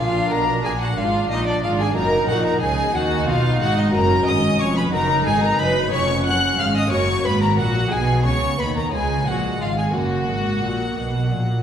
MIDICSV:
0, 0, Header, 1, 8, 480
1, 0, Start_track
1, 0, Key_signature, -6, "minor"
1, 0, Tempo, 662252
1, 1422, Time_signature, 6, 3, 24, 8
1, 2860, Key_signature, 6, "major"
1, 5744, Tempo, 675676
1, 8374, End_track
2, 0, Start_track
2, 0, Title_t, "Violin"
2, 0, Program_c, 0, 40
2, 0, Note_on_c, 0, 77, 87
2, 225, Note_on_c, 0, 82, 84
2, 236, Note_off_c, 0, 77, 0
2, 464, Note_off_c, 0, 82, 0
2, 468, Note_on_c, 0, 80, 84
2, 515, Note_off_c, 0, 80, 0
2, 593, Note_on_c, 0, 78, 82
2, 710, Note_on_c, 0, 77, 84
2, 720, Note_off_c, 0, 78, 0
2, 942, Note_off_c, 0, 77, 0
2, 946, Note_on_c, 0, 75, 84
2, 1059, Note_off_c, 0, 75, 0
2, 1063, Note_on_c, 0, 74, 77
2, 1181, Note_off_c, 0, 74, 0
2, 1185, Note_on_c, 0, 77, 85
2, 1232, Note_off_c, 0, 77, 0
2, 1302, Note_on_c, 0, 80, 82
2, 1414, Note_off_c, 0, 80, 0
2, 1419, Note_on_c, 0, 82, 88
2, 1652, Note_off_c, 0, 82, 0
2, 1656, Note_on_c, 0, 78, 85
2, 1773, Note_off_c, 0, 78, 0
2, 1777, Note_on_c, 0, 82, 92
2, 1893, Note_off_c, 0, 82, 0
2, 1897, Note_on_c, 0, 80, 91
2, 2139, Note_on_c, 0, 78, 93
2, 2149, Note_off_c, 0, 80, 0
2, 2377, Note_off_c, 0, 78, 0
2, 2381, Note_on_c, 0, 77, 91
2, 2615, Note_off_c, 0, 77, 0
2, 2624, Note_on_c, 0, 78, 95
2, 2741, Note_on_c, 0, 75, 83
2, 2752, Note_off_c, 0, 78, 0
2, 2854, Note_off_c, 0, 75, 0
2, 2858, Note_on_c, 0, 82, 100
2, 3106, Note_on_c, 0, 87, 91
2, 3116, Note_off_c, 0, 82, 0
2, 3341, Note_on_c, 0, 85, 84
2, 3352, Note_off_c, 0, 87, 0
2, 3451, Note_off_c, 0, 85, 0
2, 3455, Note_on_c, 0, 83, 90
2, 3504, Note_off_c, 0, 83, 0
2, 3577, Note_on_c, 0, 82, 104
2, 3806, Note_off_c, 0, 82, 0
2, 3810, Note_on_c, 0, 80, 91
2, 3932, Note_off_c, 0, 80, 0
2, 3938, Note_on_c, 0, 82, 98
2, 4051, Note_on_c, 0, 83, 100
2, 4062, Note_off_c, 0, 82, 0
2, 4296, Note_off_c, 0, 83, 0
2, 4299, Note_on_c, 0, 85, 102
2, 4535, Note_off_c, 0, 85, 0
2, 4539, Note_on_c, 0, 90, 99
2, 4775, Note_off_c, 0, 90, 0
2, 4779, Note_on_c, 0, 89, 82
2, 4827, Note_off_c, 0, 89, 0
2, 4896, Note_on_c, 0, 87, 99
2, 5013, Note_off_c, 0, 87, 0
2, 5017, Note_on_c, 0, 85, 95
2, 5258, Note_on_c, 0, 83, 91
2, 5268, Note_off_c, 0, 85, 0
2, 5370, Note_off_c, 0, 83, 0
2, 5375, Note_on_c, 0, 82, 88
2, 5424, Note_off_c, 0, 82, 0
2, 5497, Note_on_c, 0, 78, 93
2, 5743, Note_on_c, 0, 80, 94
2, 5754, Note_off_c, 0, 78, 0
2, 5975, Note_off_c, 0, 80, 0
2, 5979, Note_on_c, 0, 85, 91
2, 6221, Note_on_c, 0, 83, 78
2, 6231, Note_off_c, 0, 85, 0
2, 6337, Note_off_c, 0, 83, 0
2, 6341, Note_on_c, 0, 82, 80
2, 6454, Note_off_c, 0, 82, 0
2, 6458, Note_on_c, 0, 80, 87
2, 6705, Note_on_c, 0, 78, 83
2, 6716, Note_off_c, 0, 80, 0
2, 6949, Note_on_c, 0, 77, 80
2, 6959, Note_off_c, 0, 78, 0
2, 7058, Note_off_c, 0, 77, 0
2, 7062, Note_on_c, 0, 80, 74
2, 7110, Note_off_c, 0, 80, 0
2, 7184, Note_on_c, 0, 78, 85
2, 8360, Note_off_c, 0, 78, 0
2, 8374, End_track
3, 0, Start_track
3, 0, Title_t, "Violin section"
3, 0, Program_c, 1, 48
3, 0, Note_on_c, 1, 77, 92
3, 219, Note_off_c, 1, 77, 0
3, 221, Note_on_c, 1, 82, 106
3, 458, Note_off_c, 1, 82, 0
3, 462, Note_on_c, 1, 80, 100
3, 581, Note_off_c, 1, 80, 0
3, 587, Note_on_c, 1, 78, 90
3, 706, Note_off_c, 1, 78, 0
3, 708, Note_on_c, 1, 77, 104
3, 946, Note_off_c, 1, 77, 0
3, 948, Note_on_c, 1, 75, 104
3, 1063, Note_off_c, 1, 75, 0
3, 1070, Note_on_c, 1, 74, 88
3, 1117, Note_off_c, 1, 74, 0
3, 1184, Note_on_c, 1, 77, 103
3, 1301, Note_off_c, 1, 77, 0
3, 1305, Note_on_c, 1, 80, 101
3, 1352, Note_off_c, 1, 80, 0
3, 1419, Note_on_c, 1, 82, 108
3, 1654, Note_on_c, 1, 78, 111
3, 1655, Note_off_c, 1, 82, 0
3, 1775, Note_off_c, 1, 78, 0
3, 1776, Note_on_c, 1, 82, 100
3, 1825, Note_off_c, 1, 82, 0
3, 1898, Note_on_c, 1, 80, 105
3, 2134, Note_off_c, 1, 80, 0
3, 2137, Note_on_c, 1, 78, 108
3, 2375, Note_on_c, 1, 77, 110
3, 2378, Note_off_c, 1, 78, 0
3, 2611, Note_on_c, 1, 78, 109
3, 2617, Note_off_c, 1, 77, 0
3, 2733, Note_off_c, 1, 78, 0
3, 2739, Note_on_c, 1, 75, 99
3, 2850, Note_on_c, 1, 82, 107
3, 2859, Note_off_c, 1, 75, 0
3, 3090, Note_off_c, 1, 82, 0
3, 3094, Note_on_c, 1, 87, 118
3, 3332, Note_off_c, 1, 87, 0
3, 3332, Note_on_c, 1, 85, 101
3, 3455, Note_off_c, 1, 85, 0
3, 3459, Note_on_c, 1, 83, 104
3, 3572, Note_on_c, 1, 82, 107
3, 3579, Note_off_c, 1, 83, 0
3, 3810, Note_off_c, 1, 82, 0
3, 3815, Note_on_c, 1, 80, 119
3, 3934, Note_off_c, 1, 80, 0
3, 3943, Note_on_c, 1, 82, 109
3, 4057, Note_on_c, 1, 83, 113
3, 4061, Note_off_c, 1, 82, 0
3, 4294, Note_off_c, 1, 83, 0
3, 4295, Note_on_c, 1, 85, 113
3, 4533, Note_off_c, 1, 85, 0
3, 4540, Note_on_c, 1, 90, 121
3, 4776, Note_off_c, 1, 90, 0
3, 4784, Note_on_c, 1, 89, 104
3, 4902, Note_off_c, 1, 89, 0
3, 4906, Note_on_c, 1, 87, 101
3, 5019, Note_on_c, 1, 85, 117
3, 5023, Note_off_c, 1, 87, 0
3, 5255, Note_off_c, 1, 85, 0
3, 5257, Note_on_c, 1, 83, 118
3, 5377, Note_off_c, 1, 83, 0
3, 5381, Note_on_c, 1, 82, 100
3, 5499, Note_off_c, 1, 82, 0
3, 5499, Note_on_c, 1, 78, 110
3, 5734, Note_on_c, 1, 80, 106
3, 5736, Note_off_c, 1, 78, 0
3, 5971, Note_off_c, 1, 80, 0
3, 5980, Note_on_c, 1, 85, 108
3, 6214, Note_off_c, 1, 85, 0
3, 6214, Note_on_c, 1, 83, 91
3, 6336, Note_off_c, 1, 83, 0
3, 6343, Note_on_c, 1, 82, 93
3, 6454, Note_on_c, 1, 80, 96
3, 6461, Note_off_c, 1, 82, 0
3, 6692, Note_off_c, 1, 80, 0
3, 6695, Note_on_c, 1, 78, 97
3, 6938, Note_off_c, 1, 78, 0
3, 6939, Note_on_c, 1, 77, 93
3, 7058, Note_off_c, 1, 77, 0
3, 7066, Note_on_c, 1, 80, 92
3, 7181, Note_off_c, 1, 80, 0
3, 7184, Note_on_c, 1, 78, 96
3, 8374, Note_off_c, 1, 78, 0
3, 8374, End_track
4, 0, Start_track
4, 0, Title_t, "Violin section"
4, 0, Program_c, 2, 48
4, 0, Note_on_c, 2, 65, 89
4, 218, Note_off_c, 2, 65, 0
4, 220, Note_on_c, 2, 70, 95
4, 463, Note_off_c, 2, 70, 0
4, 465, Note_on_c, 2, 68, 81
4, 513, Note_off_c, 2, 68, 0
4, 594, Note_on_c, 2, 66, 84
4, 641, Note_off_c, 2, 66, 0
4, 716, Note_on_c, 2, 65, 85
4, 945, Note_off_c, 2, 65, 0
4, 953, Note_on_c, 2, 63, 85
4, 1066, Note_off_c, 2, 63, 0
4, 1074, Note_on_c, 2, 62, 78
4, 1120, Note_off_c, 2, 62, 0
4, 1190, Note_on_c, 2, 65, 90
4, 1304, Note_off_c, 2, 65, 0
4, 1317, Note_on_c, 2, 68, 85
4, 1428, Note_on_c, 2, 70, 105
4, 1429, Note_off_c, 2, 68, 0
4, 1660, Note_off_c, 2, 70, 0
4, 1664, Note_on_c, 2, 66, 93
4, 1783, Note_off_c, 2, 66, 0
4, 1789, Note_on_c, 2, 70, 88
4, 1899, Note_on_c, 2, 68, 95
4, 1903, Note_off_c, 2, 70, 0
4, 2135, Note_off_c, 2, 68, 0
4, 2144, Note_on_c, 2, 66, 96
4, 2377, Note_off_c, 2, 66, 0
4, 2382, Note_on_c, 2, 65, 93
4, 2621, Note_off_c, 2, 65, 0
4, 2629, Note_on_c, 2, 66, 97
4, 2742, Note_off_c, 2, 66, 0
4, 2746, Note_on_c, 2, 63, 90
4, 2857, Note_on_c, 2, 70, 106
4, 2860, Note_off_c, 2, 63, 0
4, 3099, Note_off_c, 2, 70, 0
4, 3105, Note_on_c, 2, 75, 101
4, 3338, Note_on_c, 2, 73, 85
4, 3342, Note_off_c, 2, 75, 0
4, 3456, Note_off_c, 2, 73, 0
4, 3456, Note_on_c, 2, 71, 100
4, 3575, Note_off_c, 2, 71, 0
4, 3575, Note_on_c, 2, 70, 96
4, 3810, Note_on_c, 2, 68, 99
4, 3812, Note_off_c, 2, 70, 0
4, 3925, Note_on_c, 2, 70, 87
4, 3934, Note_off_c, 2, 68, 0
4, 4043, Note_on_c, 2, 71, 104
4, 4052, Note_off_c, 2, 70, 0
4, 4282, Note_on_c, 2, 73, 105
4, 4286, Note_off_c, 2, 71, 0
4, 4524, Note_on_c, 2, 78, 104
4, 4527, Note_off_c, 2, 73, 0
4, 4767, Note_on_c, 2, 77, 82
4, 4768, Note_off_c, 2, 78, 0
4, 4891, Note_off_c, 2, 77, 0
4, 4893, Note_on_c, 2, 75, 91
4, 4943, Note_off_c, 2, 75, 0
4, 5013, Note_on_c, 2, 73, 97
4, 5252, Note_off_c, 2, 73, 0
4, 5252, Note_on_c, 2, 71, 96
4, 5369, Note_on_c, 2, 70, 86
4, 5376, Note_off_c, 2, 71, 0
4, 5495, Note_off_c, 2, 70, 0
4, 5497, Note_on_c, 2, 66, 96
4, 5737, Note_on_c, 2, 68, 96
4, 5740, Note_off_c, 2, 66, 0
4, 5977, Note_off_c, 2, 68, 0
4, 5979, Note_on_c, 2, 73, 89
4, 6213, Note_off_c, 2, 73, 0
4, 6213, Note_on_c, 2, 71, 73
4, 6262, Note_off_c, 2, 71, 0
4, 6344, Note_on_c, 2, 70, 82
4, 6391, Note_off_c, 2, 70, 0
4, 6461, Note_on_c, 2, 68, 84
4, 6696, Note_off_c, 2, 68, 0
4, 6697, Note_on_c, 2, 66, 83
4, 6935, Note_off_c, 2, 66, 0
4, 6937, Note_on_c, 2, 65, 82
4, 6986, Note_off_c, 2, 65, 0
4, 7062, Note_on_c, 2, 68, 73
4, 7178, Note_on_c, 2, 66, 89
4, 7179, Note_off_c, 2, 68, 0
4, 8357, Note_off_c, 2, 66, 0
4, 8374, End_track
5, 0, Start_track
5, 0, Title_t, "Viola section"
5, 0, Program_c, 3, 48
5, 0, Note_on_c, 3, 62, 77
5, 694, Note_off_c, 3, 62, 0
5, 702, Note_on_c, 3, 62, 78
5, 1406, Note_off_c, 3, 62, 0
5, 1416, Note_on_c, 3, 63, 80
5, 2128, Note_off_c, 3, 63, 0
5, 2137, Note_on_c, 3, 63, 85
5, 2844, Note_off_c, 3, 63, 0
5, 2856, Note_on_c, 3, 61, 82
5, 3548, Note_off_c, 3, 61, 0
5, 3578, Note_on_c, 3, 63, 86
5, 4293, Note_on_c, 3, 61, 82
5, 4299, Note_off_c, 3, 63, 0
5, 5003, Note_off_c, 3, 61, 0
5, 5020, Note_on_c, 3, 58, 76
5, 5732, Note_on_c, 3, 59, 74
5, 5741, Note_off_c, 3, 58, 0
5, 6439, Note_off_c, 3, 59, 0
5, 6452, Note_on_c, 3, 56, 72
5, 7163, Note_off_c, 3, 56, 0
5, 7182, Note_on_c, 3, 58, 71
5, 8374, Note_off_c, 3, 58, 0
5, 8374, End_track
6, 0, Start_track
6, 0, Title_t, "Lute"
6, 0, Program_c, 4, 24
6, 0, Note_on_c, 4, 46, 71
6, 0, Note_on_c, 4, 58, 57
6, 0, Note_on_c, 4, 62, 58
6, 0, Note_on_c, 4, 65, 60
6, 199, Note_off_c, 4, 46, 0
6, 225, Note_on_c, 4, 47, 64
6, 441, Note_off_c, 4, 47, 0
6, 464, Note_on_c, 4, 46, 64
6, 665, Note_off_c, 4, 58, 0
6, 673, Note_off_c, 4, 62, 0
6, 674, Note_on_c, 4, 58, 63
6, 679, Note_off_c, 4, 65, 0
6, 681, Note_off_c, 4, 46, 0
6, 685, Note_on_c, 4, 62, 60
6, 697, Note_on_c, 4, 65, 61
6, 708, Note_on_c, 4, 44, 66
6, 923, Note_off_c, 4, 44, 0
6, 951, Note_on_c, 4, 46, 68
6, 1163, Note_off_c, 4, 46, 0
6, 1188, Note_on_c, 4, 44, 74
6, 1381, Note_off_c, 4, 58, 0
6, 1390, Note_off_c, 4, 62, 0
6, 1390, Note_on_c, 4, 58, 64
6, 1396, Note_off_c, 4, 65, 0
6, 1401, Note_off_c, 4, 44, 0
6, 1402, Note_on_c, 4, 63, 64
6, 1414, Note_on_c, 4, 66, 59
6, 1424, Note_on_c, 4, 42, 70
6, 1639, Note_off_c, 4, 42, 0
6, 1666, Note_on_c, 4, 46, 65
6, 1870, Note_off_c, 4, 58, 0
6, 1879, Note_off_c, 4, 46, 0
6, 1897, Note_on_c, 4, 49, 69
6, 2114, Note_off_c, 4, 49, 0
6, 2139, Note_on_c, 4, 51, 72
6, 2355, Note_off_c, 4, 51, 0
6, 2375, Note_on_c, 4, 47, 72
6, 2593, Note_off_c, 4, 47, 0
6, 2616, Note_on_c, 4, 44, 79
6, 2821, Note_off_c, 4, 63, 0
6, 2825, Note_off_c, 4, 66, 0
6, 2825, Note_on_c, 4, 61, 67
6, 2834, Note_off_c, 4, 44, 0
6, 2834, Note_on_c, 4, 66, 68
6, 2859, Note_on_c, 4, 42, 73
6, 3075, Note_off_c, 4, 42, 0
6, 3075, Note_off_c, 4, 61, 0
6, 3096, Note_on_c, 4, 44, 73
6, 3313, Note_off_c, 4, 44, 0
6, 3540, Note_on_c, 4, 59, 65
6, 3544, Note_off_c, 4, 66, 0
6, 3551, Note_on_c, 4, 63, 66
6, 3561, Note_on_c, 4, 66, 65
6, 3573, Note_on_c, 4, 42, 76
6, 3791, Note_off_c, 4, 42, 0
6, 3791, Note_off_c, 4, 59, 0
6, 3815, Note_on_c, 4, 44, 72
6, 4032, Note_off_c, 4, 44, 0
6, 4055, Note_on_c, 4, 42, 72
6, 4261, Note_on_c, 4, 59, 64
6, 4263, Note_off_c, 4, 63, 0
6, 4268, Note_off_c, 4, 66, 0
6, 4272, Note_on_c, 4, 61, 64
6, 4273, Note_off_c, 4, 42, 0
6, 4283, Note_on_c, 4, 68, 66
6, 4293, Note_on_c, 4, 41, 73
6, 4513, Note_off_c, 4, 41, 0
6, 4513, Note_off_c, 4, 59, 0
6, 4537, Note_on_c, 4, 42, 66
6, 4755, Note_off_c, 4, 42, 0
6, 4775, Note_on_c, 4, 44, 74
6, 4981, Note_on_c, 4, 58, 65
6, 4985, Note_off_c, 4, 61, 0
6, 4991, Note_off_c, 4, 68, 0
6, 4994, Note_off_c, 4, 44, 0
6, 4996, Note_on_c, 4, 61, 60
6, 5004, Note_on_c, 4, 66, 62
6, 5015, Note_on_c, 4, 42, 74
6, 5233, Note_off_c, 4, 42, 0
6, 5233, Note_off_c, 4, 58, 0
6, 5241, Note_off_c, 4, 61, 0
6, 5259, Note_on_c, 4, 44, 72
6, 5476, Note_off_c, 4, 44, 0
6, 5505, Note_on_c, 4, 46, 72
6, 5709, Note_on_c, 4, 59, 63
6, 5711, Note_off_c, 4, 66, 0
6, 5720, Note_off_c, 4, 46, 0
6, 5722, Note_on_c, 4, 63, 62
6, 5730, Note_on_c, 4, 68, 62
6, 5742, Note_on_c, 4, 47, 70
6, 5956, Note_off_c, 4, 47, 0
6, 5979, Note_on_c, 4, 49, 65
6, 6194, Note_off_c, 4, 49, 0
6, 6216, Note_on_c, 4, 51, 61
6, 6416, Note_off_c, 4, 59, 0
6, 6425, Note_on_c, 4, 59, 59
6, 6427, Note_off_c, 4, 63, 0
6, 6431, Note_off_c, 4, 68, 0
6, 6433, Note_off_c, 4, 51, 0
6, 6437, Note_on_c, 4, 61, 58
6, 6449, Note_on_c, 4, 65, 55
6, 6459, Note_on_c, 4, 49, 69
6, 6675, Note_off_c, 4, 49, 0
6, 6701, Note_on_c, 4, 46, 65
6, 6917, Note_off_c, 4, 46, 0
6, 6937, Note_on_c, 4, 44, 66
6, 7142, Note_off_c, 4, 59, 0
6, 7147, Note_on_c, 4, 58, 56
6, 7148, Note_off_c, 4, 61, 0
6, 7154, Note_off_c, 4, 65, 0
6, 7155, Note_off_c, 4, 44, 0
6, 7160, Note_on_c, 4, 61, 56
6, 7168, Note_on_c, 4, 66, 55
6, 7180, Note_on_c, 4, 42, 61
6, 7397, Note_off_c, 4, 42, 0
6, 7397, Note_off_c, 4, 58, 0
6, 7403, Note_off_c, 4, 61, 0
6, 7420, Note_on_c, 4, 44, 57
6, 7637, Note_off_c, 4, 44, 0
6, 7665, Note_on_c, 4, 46, 59
6, 7880, Note_off_c, 4, 46, 0
6, 7904, Note_on_c, 4, 47, 57
6, 8119, Note_off_c, 4, 47, 0
6, 8140, Note_on_c, 4, 46, 61
6, 8357, Note_off_c, 4, 46, 0
6, 8374, Note_off_c, 4, 66, 0
6, 8374, End_track
7, 0, Start_track
7, 0, Title_t, "Cello section"
7, 0, Program_c, 5, 48
7, 0, Note_on_c, 5, 46, 88
7, 220, Note_off_c, 5, 46, 0
7, 225, Note_on_c, 5, 47, 74
7, 460, Note_off_c, 5, 47, 0
7, 464, Note_on_c, 5, 46, 75
7, 700, Note_off_c, 5, 46, 0
7, 706, Note_on_c, 5, 44, 84
7, 940, Note_off_c, 5, 44, 0
7, 945, Note_on_c, 5, 46, 77
7, 1179, Note_off_c, 5, 46, 0
7, 1187, Note_on_c, 5, 44, 74
7, 1419, Note_off_c, 5, 44, 0
7, 1426, Note_on_c, 5, 42, 92
7, 1659, Note_off_c, 5, 42, 0
7, 1665, Note_on_c, 5, 46, 82
7, 1898, Note_off_c, 5, 46, 0
7, 1907, Note_on_c, 5, 49, 79
7, 2139, Note_off_c, 5, 49, 0
7, 2140, Note_on_c, 5, 51, 91
7, 2375, Note_off_c, 5, 51, 0
7, 2384, Note_on_c, 5, 47, 83
7, 2621, Note_off_c, 5, 47, 0
7, 2625, Note_on_c, 5, 44, 80
7, 2862, Note_off_c, 5, 44, 0
7, 2865, Note_on_c, 5, 42, 99
7, 3086, Note_off_c, 5, 42, 0
7, 3103, Note_on_c, 5, 44, 82
7, 3336, Note_off_c, 5, 44, 0
7, 3338, Note_on_c, 5, 41, 84
7, 3573, Note_off_c, 5, 41, 0
7, 3576, Note_on_c, 5, 42, 93
7, 3812, Note_off_c, 5, 42, 0
7, 3817, Note_on_c, 5, 44, 83
7, 4058, Note_off_c, 5, 44, 0
7, 4058, Note_on_c, 5, 42, 81
7, 4294, Note_off_c, 5, 42, 0
7, 4300, Note_on_c, 5, 41, 97
7, 4535, Note_off_c, 5, 41, 0
7, 4543, Note_on_c, 5, 42, 87
7, 4778, Note_on_c, 5, 44, 82
7, 4782, Note_off_c, 5, 42, 0
7, 5015, Note_off_c, 5, 44, 0
7, 5023, Note_on_c, 5, 42, 91
7, 5257, Note_off_c, 5, 42, 0
7, 5261, Note_on_c, 5, 44, 79
7, 5496, Note_off_c, 5, 44, 0
7, 5502, Note_on_c, 5, 46, 77
7, 5742, Note_off_c, 5, 46, 0
7, 5743, Note_on_c, 5, 47, 94
7, 5975, Note_off_c, 5, 47, 0
7, 5980, Note_on_c, 5, 49, 82
7, 6218, Note_off_c, 5, 49, 0
7, 6222, Note_on_c, 5, 51, 73
7, 6455, Note_off_c, 5, 51, 0
7, 6457, Note_on_c, 5, 49, 82
7, 6694, Note_off_c, 5, 49, 0
7, 6700, Note_on_c, 5, 46, 71
7, 6936, Note_off_c, 5, 46, 0
7, 6941, Note_on_c, 5, 44, 73
7, 7176, Note_off_c, 5, 44, 0
7, 7181, Note_on_c, 5, 42, 81
7, 7416, Note_off_c, 5, 42, 0
7, 7419, Note_on_c, 5, 44, 72
7, 7658, Note_on_c, 5, 46, 65
7, 7660, Note_off_c, 5, 44, 0
7, 7898, Note_on_c, 5, 47, 72
7, 7900, Note_off_c, 5, 46, 0
7, 8135, Note_off_c, 5, 47, 0
7, 8138, Note_on_c, 5, 46, 69
7, 8374, Note_off_c, 5, 46, 0
7, 8374, End_track
8, 0, Start_track
8, 0, Title_t, "Double bass section"
8, 0, Program_c, 6, 48
8, 0, Note_on_c, 6, 34, 78
8, 218, Note_off_c, 6, 34, 0
8, 222, Note_on_c, 6, 35, 71
8, 459, Note_off_c, 6, 35, 0
8, 464, Note_on_c, 6, 34, 80
8, 700, Note_off_c, 6, 34, 0
8, 704, Note_on_c, 6, 32, 78
8, 939, Note_off_c, 6, 32, 0
8, 943, Note_on_c, 6, 34, 79
8, 1178, Note_off_c, 6, 34, 0
8, 1182, Note_on_c, 6, 32, 77
8, 1417, Note_off_c, 6, 32, 0
8, 1420, Note_on_c, 6, 30, 87
8, 1656, Note_off_c, 6, 30, 0
8, 1661, Note_on_c, 6, 34, 78
8, 1896, Note_off_c, 6, 34, 0
8, 1901, Note_on_c, 6, 37, 78
8, 2136, Note_off_c, 6, 37, 0
8, 2139, Note_on_c, 6, 39, 87
8, 2374, Note_off_c, 6, 39, 0
8, 2377, Note_on_c, 6, 35, 83
8, 2617, Note_on_c, 6, 32, 82
8, 2618, Note_off_c, 6, 35, 0
8, 2858, Note_on_c, 6, 30, 93
8, 2859, Note_off_c, 6, 32, 0
8, 3082, Note_off_c, 6, 30, 0
8, 3100, Note_on_c, 6, 32, 81
8, 3335, Note_off_c, 6, 32, 0
8, 3341, Note_on_c, 6, 29, 83
8, 3575, Note_off_c, 6, 29, 0
8, 3580, Note_on_c, 6, 30, 91
8, 3814, Note_off_c, 6, 30, 0
8, 3820, Note_on_c, 6, 32, 90
8, 4057, Note_on_c, 6, 30, 82
8, 4059, Note_off_c, 6, 32, 0
8, 4293, Note_off_c, 6, 30, 0
8, 4301, Note_on_c, 6, 29, 88
8, 4536, Note_off_c, 6, 29, 0
8, 4536, Note_on_c, 6, 30, 80
8, 4777, Note_on_c, 6, 32, 83
8, 4779, Note_off_c, 6, 30, 0
8, 5014, Note_off_c, 6, 32, 0
8, 5020, Note_on_c, 6, 30, 84
8, 5255, Note_off_c, 6, 30, 0
8, 5262, Note_on_c, 6, 32, 81
8, 5497, Note_off_c, 6, 32, 0
8, 5501, Note_on_c, 6, 34, 81
8, 5742, Note_off_c, 6, 34, 0
8, 5744, Note_on_c, 6, 35, 89
8, 5976, Note_off_c, 6, 35, 0
8, 5981, Note_on_c, 6, 37, 80
8, 6218, Note_on_c, 6, 39, 75
8, 6219, Note_off_c, 6, 37, 0
8, 6453, Note_off_c, 6, 39, 0
8, 6459, Note_on_c, 6, 37, 80
8, 6695, Note_off_c, 6, 37, 0
8, 6698, Note_on_c, 6, 34, 73
8, 6935, Note_off_c, 6, 34, 0
8, 6941, Note_on_c, 6, 32, 72
8, 7176, Note_off_c, 6, 32, 0
8, 7184, Note_on_c, 6, 30, 74
8, 7418, Note_off_c, 6, 30, 0
8, 7424, Note_on_c, 6, 32, 67
8, 7662, Note_on_c, 6, 34, 72
8, 7663, Note_off_c, 6, 32, 0
8, 7902, Note_off_c, 6, 34, 0
8, 7902, Note_on_c, 6, 35, 69
8, 8137, Note_off_c, 6, 35, 0
8, 8141, Note_on_c, 6, 34, 72
8, 8374, Note_off_c, 6, 34, 0
8, 8374, End_track
0, 0, End_of_file